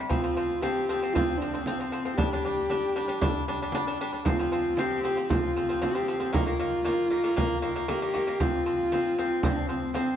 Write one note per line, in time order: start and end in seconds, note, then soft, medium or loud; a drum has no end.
0.09 0.21 F3 medium
0.09 0.21 C4 medium
0.09 0.63 F4 medium
0.09 frame drum medium
0.24 0.34 F3 medium
0.24 0.34 C4 medium
0.37 0.58 F3 medium
0.37 0.58 C4 medium
0.62 0.83 F3 medium
0.62 0.84 C4 medium
0.62 1.15 G4 medium
0.62 frame drum medium
0.89 0.99 F3 medium
0.89 1.00 C4 medium
0.89 frame drum soft
1.02 1.12 F3 medium
1.02 1.13 C4 medium
1.13 1.36 F3 medium
1.13 1.36 C4 loud
1.13 1.39 F4 loud
1.13 frame drum medium
1.37 1.66 D4 medium
1.41 1.51 F3 medium
1.41 1.52 C4 medium
1.41 frame drum soft
1.54 1.64 F3 medium
1.54 1.64 C4 medium
1.64 1.77 F3 medium
1.64 1.87 C4 medium
1.64 1.77 C4 medium
1.64 frame drum medium
1.80 1.90 F3 medium
1.80 1.90 C4 medium
1.88 2.16 C4 medium
1.92 2.03 F3 medium
1.92 2.03 C4 medium
2.05 2.16 F3 medium
2.05 2.16 C4 medium
2.05 frame drum soft
2.14 2.28 G3 medium
2.14 2.28 D4 medium
2.14 3.72 G4 loud
2.14 frame drum medium
2.33 2.42 G3 medium
2.33 2.42 D4 medium
2.45 2.65 G3 medium
2.45 2.66 D4 medium
2.70 2.91 G3 medium
2.70 2.91 D4 loud
2.70 frame drum medium
2.95 3.06 G3 medium
2.95 3.07 D4 medium
2.95 frame drum soft
3.08 3.19 G3 medium
3.08 3.19 D4 medium
3.21 3.42 G3 loud
3.21 3.43 D4 loud
3.21 frame drum medium
3.48 3.58 G3 medium
3.48 3.59 D4 medium
3.48 frame drum soft
3.62 3.72 G3 medium
3.62 3.72 D4 medium
3.72 3.84 G3 loud
3.72 3.85 D4 loud
3.72 frame drum medium
3.87 3.97 G3 medium
3.87 3.97 D4 medium
4.01 4.11 G3 medium
4.01 4.11 D4 medium
4.12 4.23 G3 medium
4.12 4.23 D4 medium
4.12 frame drum soft
4.25 4.36 F3 medium
4.25 4.36 C4 medium
4.25 4.82 F4 medium
4.25 frame drum medium
4.39 4.49 F3 medium
4.39 4.50 C4 medium
4.52 4.72 F3 medium
4.52 4.73 C4 medium
4.77 4.99 F3 medium
4.77 4.99 C4 loud
4.77 5.31 G4 loud
4.77 frame drum medium
5.04 5.14 F3 medium
5.04 5.14 C4 medium
5.04 frame drum soft
5.17 5.27 F3 medium
5.17 5.27 C4 medium
5.30 5.50 F3 medium
5.30 5.51 C4 medium
5.30 5.85 F4 loud
5.30 frame drum medium
5.56 5.66 F3 medium
5.56 5.67 C4 medium
5.56 frame drum soft
5.69 5.79 F3 medium
5.69 5.79 C4 medium
5.82 5.92 F3 medium
5.82 5.92 C4 medium
5.82 6.26 G4 loud
5.82 frame drum medium
5.95 6.05 F3 medium
5.95 6.05 C4 medium
6.08 6.18 F3 medium
6.08 6.18 C4 medium
6.20 6.30 F3 medium
6.20 6.30 C4 medium
6.20 frame drum soft
6.26 6.37 G4 medium
6.33 6.43 D#3 medium
6.33 6.43 A#3 medium
6.33 7.89 F4 loud
6.33 frame drum medium
6.46 6.56 D#3 medium
6.46 6.57 A#3 medium
6.59 6.80 D#3 medium
6.59 6.80 A#3 medium
6.85 7.05 D#3 medium
6.85 7.06 A#3 medium
6.85 frame drum medium
7.11 7.21 D#3 medium
7.11 7.21 A#3 medium
7.11 frame drum soft
7.24 7.34 D#3 medium
7.24 7.34 A#3 medium
7.36 7.57 D#3 medium
7.36 7.57 A#3 loud
7.36 frame drum medium
7.62 7.73 D#3 medium
7.62 7.73 A#3 medium
7.62 frame drum soft
7.76 7.86 D#3 medium
7.76 7.86 A#3 medium
7.88 7.99 D#3 loud
7.88 7.99 A#3 loud
7.88 8.43 G4 medium
7.88 frame drum medium
8.02 8.12 D#3 medium
8.02 8.12 A#3 medium
8.14 8.24 D#3 medium
8.14 8.25 A#3 medium
8.14 frame drum soft
8.27 8.38 D#3 medium
8.27 8.38 A#3 medium
8.27 frame drum soft
8.40 8.61 F3 medium
8.40 8.61 C4 medium
8.40 9.47 F4 loud
8.40 frame drum medium
8.66 8.87 F3 medium
8.66 8.87 C4 medium
8.80 frame drum soft
8.92 9.13 F3 medium
8.92 9.13 C4 medium
8.92 frame drum medium
9.19 9.39 F3 medium
9.19 9.39 C4 medium
9.19 frame drum soft
9.43 9.65 F3 medium
9.43 9.65 C4 medium
9.43 9.72 D4 medium
9.43 frame drum medium
9.69 9.90 F3 medium
9.69 9.90 C4 medium
9.69 9.96 C4 medium
9.82 frame drum soft
9.94 10.16 F3 medium
9.94 10.16 C4 loud
9.94 10.16 C4 medium
9.94 frame drum medium